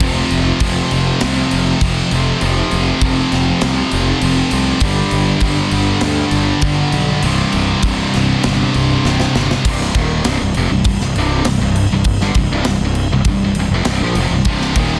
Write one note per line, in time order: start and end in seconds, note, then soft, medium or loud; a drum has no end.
0.00 0.20 F1 loud
0.00 0.61 F2 loud
0.00 2.40 F2 medium
0.00 0.61 C3 loud
0.00 2.41 C3 medium
0.00 0.62 F3 loud
0.00 2.41 F3 medium
0.00 kick loud
0.00 crash medium
0.30 0.50 F1 loud
0.30 crash medium
0.60 0.80 F1 loud
0.60 0.92 F2 medium
0.60 0.92 C3 medium
0.60 0.93 F3 medium
0.60 kick medium
0.60 crash medium
0.91 1.10 F1 medium
0.91 1.21 F2 medium
0.91 1.21 C3 medium
0.91 1.21 F3 medium
0.91 crash medium
1.21 1.41 C2 loud
1.21 1.81 F2 loud
1.21 1.81 C3 loud
1.21 1.82 F3 loud
1.21 snare loud
1.21 crash medium
1.51 1.72 F1 medium
1.51 crash medium
1.81 2.00 F1 medium
1.81 2.12 F2 medium
1.81 2.13 C3 medium
1.81 2.13 F3 medium
1.81 kick medium
1.81 crash medium
2.11 2.31 F1 medium
2.11 2.42 F2 medium
2.11 2.43 C3 medium
2.11 2.43 F3 medium
2.11 crash medium
2.41 2.61 F1 loud
2.41 4.81 F2 medium
2.41 3.01 F2 loud
2.41 4.82 C3 loud
2.41 3.03 C3 loud
2.41 3.03 F3 loud
2.41 4.83 F3 medium
2.41 crash medium
2.71 2.91 F1 loud
2.71 crash medium
3.01 3.20 F1 loud
3.01 3.31 F2 medium
3.01 3.31 C3 medium
3.01 3.32 F3 medium
3.01 kick medium
3.01 crash medium
3.32 3.51 F1 medium
3.32 3.61 F2 medium
3.32 3.63 C3 medium
3.32 3.63 F3 loud
3.32 snare soft
3.32 crash medium
3.61 3.81 C2 medium
3.61 4.23 F2 loud
3.61 4.23 C3 loud
3.61 4.24 F3 loud
3.61 snare loud
3.61 crash medium
3.91 4.11 F1 medium
3.91 crash medium
4.21 4.41 F1 medium
4.21 4.51 F2 medium
4.21 4.52 C3 medium
4.21 crash medium
4.25 4.52 F3 loud
4.51 4.71 C2 medium
4.51 4.81 F2 medium
4.51 4.81 C3 medium
4.51 4.81 F3 medium
4.51 crash medium
4.80 5.01 G1 medium
4.80 7.21 G2 medium
4.80 5.39 G2 loud
4.80 5.41 D3 loud
4.80 7.22 D3 medium
4.80 5.42 G3 loud
4.80 kick loud
4.80 crash medium
4.85 7.27 G3 loud
5.11 5.31 G1 loud
5.11 crash medium
5.40 5.61 G1 loud
5.40 5.71 G2 medium
5.40 5.71 D3 medium
5.40 5.73 G3 medium
5.40 kick medium
5.40 crash medium
5.71 5.91 G1 medium
5.71 6.00 G2 medium
5.71 6.01 D3 medium
5.71 6.02 G3 loud
5.71 crash medium
6.01 6.21 D2 loud
6.01 6.61 G2 loud
6.01 6.62 D3 loud
6.01 6.63 G3 loud
6.01 snare loud
6.01 crash medium
6.31 6.51 G1 medium
6.31 crash medium
6.61 6.82 G1 medium
6.61 6.91 G2 medium
6.61 6.92 D3 medium
6.61 6.94 G3 loud
6.61 kick medium
6.61 crash medium
6.92 7.12 B1 medium
6.92 7.21 G2 medium
6.92 7.22 D3 medium
6.92 7.24 G3 medium
6.92 crash medium
7.22 7.42 C1 loud
7.22 7.83 C2 loud
7.22 9.63 C2 medium
7.22 7.84 G2 loud
7.22 9.64 G2 medium
7.22 7.84 C3 loud
7.22 crash medium
7.27 9.65 C3 medium
7.52 7.73 C1 medium
7.52 crash medium
7.82 8.02 C1 loud
7.82 8.13 C2 medium
7.82 8.13 G2 medium
7.82 8.14 C3 medium
7.82 kick medium
7.82 crash medium
8.14 8.33 C1 medium
8.14 8.43 C2 medium
8.14 8.44 G2 medium
8.14 8.44 C3 medium
8.14 snare soft
8.14 crash medium
8.43 8.64 G1 medium
8.43 9.04 C2 loud
8.43 9.05 G2 medium
8.43 9.06 C3 loud
8.43 snare loud
8.43 crash medium
8.74 8.94 C1 medium
8.74 crash medium
9.05 9.24 C1 medium
9.05 9.34 C2 medium
9.05 9.35 G2 medium
9.05 9.35 C3 medium
9.05 snare medium
9.20 snare medium
9.35 9.54 G1 medium
9.35 9.63 C2 medium
9.35 9.64 G2 medium
9.35 9.64 C3 medium
9.35 snare loud
9.51 snare loud
9.65 9.93 C1 loud
9.65 9.94 C2 loud
9.65 9.95 G2 medium
9.65 9.95 C3 medium
9.65 kick loud
9.65 crash loud
9.65 crash medium
9.81 snare soft
9.95 10.23 D#1 loud
9.95 10.24 D#2 medium
9.95 10.25 A#2 loud
9.95 10.25 D#3 loud
9.95 kick medium
9.95 crash medium
10.24 10.39 C1 loud
10.24 10.40 C2 loud
10.24 10.40 G2 loud
10.24 snare loud
10.24 crash medium
10.41 10.55 C1 medium
10.41 10.56 C2 medium
10.41 10.57 G2 medium
10.54 10.70 F1 medium
10.54 10.70 F2 medium
10.54 10.71 C3 medium
10.54 crash medium
10.71 10.85 C1 medium
10.71 10.85 C2 medium
10.71 10.85 G2 medium
10.84 10.99 C1 medium
10.84 11.01 C2 medium
10.84 11.01 G2 medium
10.84 kick loud
10.84 crash medium
11.01 11.15 C1 medium
11.01 11.16 C2 medium
11.01 11.17 G2 medium
11.01 snare soft
11.16 11.44 C1 medium
11.16 11.46 C2 medium
11.16 11.46 G2 medium
11.16 11.47 C3 loud
11.16 crash medium
11.45 11.60 C1 medium
11.45 11.60 C2 medium
11.45 11.61 G2 medium
11.45 snare loud
11.45 crash medium
11.61 11.89 C1 medium
11.61 11.85 C2 medium
11.61 11.86 G2 medium
11.76 crash medium
11.90 12.18 C1 medium
11.90 12.16 C2 medium
11.94 12.17 G2 medium
12.04 kick loud
12.04 crash medium
12.21 12.34 G1 medium
12.21 12.36 G2 medium
12.21 12.36 D3 loud
12.21 snare soft
12.34 12.49 C1 medium
12.34 12.51 C2 medium
12.34 12.52 G2 medium
12.34 kick medium
12.34 crash medium
12.51 12.65 C1 loud
12.51 12.66 C2 loud
12.51 12.66 G2 loud
12.64 12.80 C1 medium
12.64 12.82 C2 medium
12.64 snare loud
12.64 crash medium
12.69 12.83 G2 medium
12.81 13.09 C1 medium
12.81 13.07 C2 medium
12.85 13.07 G2 medium
12.95 crash medium
13.11 13.24 C1 medium
13.11 13.26 C2 medium
13.11 13.27 G2 medium
13.24 13.40 C1 medium
13.24 13.42 C2 medium
13.24 kick loud
13.24 crash medium
13.29 13.43 G2 medium
13.40 13.55 C1 medium
13.44 13.58 C2 medium
13.44 13.58 G2 medium
13.55 13.70 C1 medium
13.55 crash medium
13.59 13.73 C2 medium
13.59 13.73 G2 medium
13.71 13.85 F1 medium
13.71 13.87 F2 loud
13.75 13.87 C3 loud
13.85 14.00 C1 medium
13.85 snare loud
13.85 crash medium
13.89 14.02 C2 medium
13.89 14.02 G2 loud
14.01 14.14 A#1 medium
14.01 14.17 A#2 medium
14.01 14.17 F3 loud
14.15 14.30 F1 loud
14.15 crash medium
14.20 14.32 F2 loud
14.20 14.33 C3 loud
14.30 14.45 C1 medium
14.35 14.47 C2 medium
14.35 14.47 G2 medium
14.45 14.74 C1 loud
14.45 14.75 C2 medium
14.45 14.77 C2 medium
14.45 14.76 G2 loud
14.45 14.77 G2 loud
14.45 14.77 C3 loud
14.45 14.77 C3 medium
14.45 kick loud
14.45 crash medium
14.62 snare soft
14.76 14.99 D#1 loud
14.76 14.99 D#2 medium
14.76 14.99 D#2 loud
14.76 14.99 A#2 medium
14.76 14.99 A#2 loud
14.76 14.99 D#3 loud
14.76 kick medium
14.76 crash medium